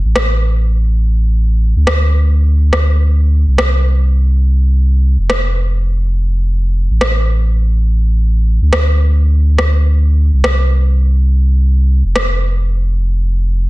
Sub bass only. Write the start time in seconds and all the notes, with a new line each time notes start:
0.04 A1
1.76 D2
3.47 C2
5.18 F1
6.90 A1
8.61 D2
10.33 C2
12.04 F1